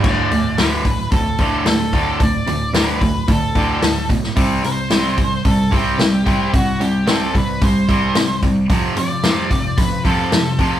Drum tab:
CC |x---------------|----------------|----------------|----------------|
HH |--o-o-o-o-o-o-o-|o-o-o-o-o-o-o-o-|o-o-o-o-o-o-o-o-|o-o-o-o-o-o-o-o-|
SD |----o-------o---|----o-------o--o|----o-------o---|----o-------o---|
BD |o-----o-o-o---o-|o-----o-o-o---o-|o-----o-o-o---o-|o-----o-o-o---o-|

CC |----------------|
HH |o-o-o-o-o-o-o-o-|
SD |----o-------o---|
BD |o-----o-o-o---o-|